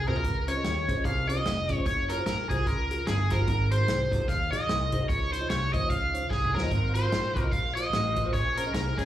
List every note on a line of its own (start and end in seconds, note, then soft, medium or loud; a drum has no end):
0.00 0.18 C2 medium
0.08 0.12 C4 medium
0.08 0.12 F4 medium
0.08 0.12 F#4 medium
0.08 0.50 A#4 medium
0.08 0.13 C5 medium
0.08 mid tom medium
0.16 0.24 C4 medium
0.16 0.24 F4 medium
0.16 0.24 F#4 medium
0.16 0.24 G#4 medium
0.16 floor tom medium
0.24 0.59 C#2 medium
0.24 0.84 C#3 medium
0.24 kick loud
0.24 closed hi-hat medium
0.48 0.52 C#4 medium
0.48 0.53 F4 medium
0.48 0.53 G#4 medium
0.48 0.53 C5 medium
0.48 1.07 C#5 medium
0.48 closed hi-hat medium
0.56 0.66 C#4 medium
0.56 0.66 F4 medium
0.56 0.66 G#4 medium
0.56 0.67 D#5 medium
0.64 0.85 D#2 medium
0.64 snare medium
0.64 closed hi-hat medium
0.88 1.03 C#2 medium
0.88 0.93 C#4 medium
0.88 0.93 F4 medium
0.88 0.93 G#4 medium
0.88 0.93 C5 medium
0.88 kick medium
0.88 snare soft
0.88 closed hi-hat medium
0.97 1.07 C#4 medium
0.97 1.07 F4 medium
0.97 1.07 G#4 medium
0.97 1.07 D#5 medium
1.05 1.39 C2 loud
1.05 1.29 F5 loud
1.05 kick medium
1.05 closed hi-hat medium
1.28 1.38 C#4 medium
1.28 1.38 F4 medium
1.28 1.38 G#4 medium
1.28 1.38 C5 medium
1.28 1.74 D#5 medium
1.28 closed hi-hat medium
1.45 1.80 F1 medium
1.45 snare loud
1.45 closed hi-hat medium
1.69 1.74 C#4 medium
1.69 1.74 F4 medium
1.69 1.74 G#4 medium
1.69 1.74 D#5 medium
1.69 kick medium
1.69 closed hi-hat medium
1.74 1.86 C#4 medium
1.74 1.86 F4 medium
1.74 1.86 G#4 medium
1.74 1.86 C5 medium
1.74 1.86 C#5 medium
1.86 2.20 F#1 loud
1.86 2.10 C#5 medium
1.86 kick loud
1.86 closed hi-hat medium
2.09 2.14 F4 medium
2.09 2.15 F#4 medium
2.09 2.15 G#4 soft
2.09 2.25 A#4 medium
2.09 2.15 A#4 medium
2.09 closed hi-hat medium
2.18 2.28 F4 medium
2.18 2.28 F#4 medium
2.18 2.28 G#4 medium
2.18 2.28 C5 medium
2.26 2.46 A#1 medium
2.26 2.49 A#4 medium
2.26 snare loud
2.26 closed hi-hat medium
2.50 2.64 C2 medium
2.50 2.55 F4 medium
2.50 2.55 F#4 medium
2.50 2.67 G#4 medium
2.50 2.55 G#4 medium
2.50 2.55 C5 medium
2.50 kick medium
2.50 closed hi-hat medium
2.58 2.69 F4 medium
2.58 2.68 F#4 medium
2.58 2.69 G#4 medium
2.58 2.69 A#4 medium
2.66 3.01 C#2 medium
2.66 3.09 A#4 medium
2.66 kick loud
2.66 closed hi-hat medium
2.91 3.00 F4 medium
2.91 3.00 F#4 medium
2.91 3.00 G#4 medium
2.91 3.01 A#4 medium
2.91 closed hi-hat medium
3.07 3.42 G1 medium
3.07 3.31 G#4 medium
3.07 snare loud
3.07 closed hi-hat medium
3.30 3.36 F4 medium
3.30 3.36 F#4 medium
3.30 3.36 G#4 medium
3.30 3.71 A#4 medium
3.30 3.36 C5 medium
3.30 kick medium
3.30 snare soft
3.30 closed hi-hat medium
3.39 3.48 F4 medium
3.39 3.48 F#4 medium
3.39 3.48 G#4 medium
3.39 3.48 A#4 medium
3.48 3.82 G#1 loud
3.48 4.08 G#2 medium
3.48 kick loud
3.48 closed hi-hat medium
3.71 3.76 D#4 medium
3.71 3.76 F#4 medium
3.71 3.76 G#4 medium
3.71 3.76 C5 medium
3.71 4.31 C5 medium
3.71 closed hi-hat medium
3.80 3.90 D#4 medium
3.80 3.90 F#4 medium
3.80 3.90 G#4 medium
3.80 3.90 C5 medium
3.88 4.08 C2 medium
3.88 snare loud
3.88 closed hi-hat medium
4.11 4.26 C#2 medium
4.11 4.16 D#4 medium
4.11 4.16 F#4 medium
4.11 4.17 G#4 medium
4.11 4.17 C5 medium
4.11 kick medium
4.11 closed hi-hat medium
4.19 4.30 D#4 medium
4.19 4.30 F#4 medium
4.19 4.30 G#4 medium
4.19 4.30 A#4 medium
4.28 4.48 D#2 medium
4.28 4.52 F5 loud
4.28 kick loud
4.28 closed hi-hat medium
4.52 4.66 A#1 medium
4.52 4.62 D#4 medium
4.52 4.62 F#4 medium
4.52 4.62 G#4 medium
4.52 4.62 D#5 medium
4.52 5.08 D#5 medium
4.52 closed hi-hat medium
4.69 5.03 C2 medium
4.69 snare loud
4.69 closed hi-hat medium
4.92 4.97 D#4 medium
4.92 4.97 F#4 medium
4.92 4.97 G#4 medium
4.92 4.97 C5 medium
4.92 kick medium
4.92 closed hi-hat medium
5.00 5.09 D#4 medium
5.00 5.09 F#4 medium
5.00 5.09 G#4 medium
5.00 5.09 A#4 medium
5.08 5.44 C#2 loud
5.08 5.69 C#3 medium
5.08 5.32 C#5 medium
5.08 kick loud
5.08 closed hi-hat medium
5.32 5.38 D#4 medium
5.32 5.38 F4 medium
5.32 5.38 C5 medium
5.32 5.50 C5 medium
5.32 5.38 C#5 medium
5.32 closed hi-hat medium
5.40 5.51 D#4 medium
5.40 5.51 F4 medium
5.40 5.51 C5 medium
5.40 5.51 D#5 medium
5.50 5.70 C2 medium
5.50 5.73 C#5 medium
5.50 snare loud
5.50 closed hi-hat medium
5.73 5.88 D#2 medium
5.73 5.78 D#4 medium
5.73 5.79 F4 medium
5.73 5.78 C5 medium
5.73 5.90 D#5 medium
5.73 5.79 D#5 medium
5.73 kick medium
5.73 closed hi-hat medium
5.81 5.92 D#4 medium
5.81 5.92 F4 soft
5.81 5.92 C5 soft
5.81 5.92 C#5 medium
5.90 6.25 C#2 medium
5.90 6.32 F5 medium
5.90 kick loud
5.90 closed hi-hat medium
6.14 6.24 D#4 medium
6.14 6.24 F4 medium
6.14 6.24 C5 medium
6.14 6.24 C#5 medium
6.14 closed hi-hat medium
6.30 6.51 C2 medium
6.30 6.53 G#4 medium
6.30 kick medium
6.30 snare medium
6.45 mid tom medium
6.54 6.69 D#2 medium
6.54 6.59 D#4 medium
6.54 6.59 F4 medium
6.54 6.94 A#4 medium
6.54 6.59 C5 medium
6.54 6.60 C#5 medium
6.54 snare medium
6.63 6.71 D#4 medium
6.63 6.72 F4 medium
6.63 6.72 C5 medium
6.63 6.72 D#5 medium
6.71 7.06 G#1 medium
6.71 7.32 G#2 medium
6.71 8.31 A#3 medium
6.71 8.31 F4 soft
6.71 8.31 F#4 medium
6.71 6.78 B4 soft
6.71 kick loud
6.71 closed hi-hat medium
6.77 8.33 C5 medium
6.94 7.00 F4 medium
6.94 7.00 F#4 medium
6.94 7.00 A#4 soft
6.94 7.40 C5 medium
6.94 7.00 C5 medium
6.94 closed hi-hat medium
7.03 7.13 F4 medium
7.03 7.14 F#4 medium
7.03 7.14 A#4 medium
7.03 7.14 C5 medium
7.12 7.32 A#1 medium
7.12 snare loud
7.12 closed hi-hat medium
7.35 7.50 C2 medium
7.35 7.40 F4 medium
7.35 7.40 F#4 medium
7.35 7.41 A#4 medium
7.35 7.41 C5 medium
7.35 kick medium
7.35 closed hi-hat medium
7.40 7.54 F4 medium
7.40 7.54 F#4 medium
7.40 7.54 A#4 medium
7.40 7.54 D#5 medium
7.52 7.87 A#1 medium
7.52 7.75 F5 loud
7.52 kick loud
7.52 closed hi-hat medium
7.75 7.86 F4 medium
7.75 7.86 F#4 medium
7.75 7.86 A#4 medium
7.75 7.86 C5 medium
7.75 8.33 D#5 medium
7.75 closed hi-hat medium
7.93 8.28 A1 medium
7.93 snare loud
7.93 closed hi-hat medium
8.16 8.21 F4 medium
8.16 8.21 F#4 medium
8.16 8.21 A#4 medium
8.16 8.22 D#5 medium
8.16 kick medium
8.16 closed hi-hat medium
8.25 8.34 F4 medium
8.25 8.34 F#4 medium
8.25 8.34 A#4 medium
8.25 8.34 C5 medium
8.33 8.68 A#1 medium
8.33 8.94 A#2 medium
8.33 9.05 A#3 medium
8.33 9.05 C#4 soft
8.33 9.05 G#4 soft
8.33 8.39 B4 soft
8.33 8.56 C#5 medium
8.33 kick loud
8.33 closed hi-hat medium
8.38 9.05 C5 medium
8.57 8.62 C#4 medium
8.57 8.62 G#4 medium
8.57 8.73 A#4 medium
8.57 8.63 A#4 medium
8.57 8.63 C5 medium
8.57 closed hi-hat medium
8.66 8.76 C#4 medium
8.66 8.76 G#4 medium
8.66 8.76 A#4 medium
8.66 8.76 D#5 medium
8.74 8.94 C2 medium
8.74 8.98 A#4 medium
8.74 snare loud
8.74 closed hi-hat medium
8.98 9.05 C#2 medium
8.98 9.03 C#4 medium
8.98 9.05 G#4 medium
8.98 9.03 G#4 medium
8.98 9.03 A#4 medium
8.98 9.03 C#5 medium
8.98 kick medium
8.98 snare soft
8.98 closed hi-hat medium